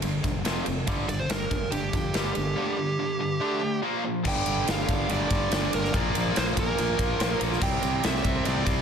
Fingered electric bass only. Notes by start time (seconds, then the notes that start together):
0.03 G1
0.25 E1
0.46 F1
0.68 F1
0.88 G1
1.09 G1
1.30 G1
1.51 G1
1.73 G1
1.94 F2
2.16 G1
2.37 G1
4.26 G1
4.47 G1
4.69 G1
4.89 G1
5.11 G1
5.31 G1
5.53 G1
5.74 G1
5.94 A#1
6.16 A#1
6.37 A#1
6.58 A#1
6.80 A#1
6.99 A#1
7.21 A#1
7.41 A#1
7.62 C2
7.83 C2
8.05 C2
8.25 C2
8.47 C2
8.67 C2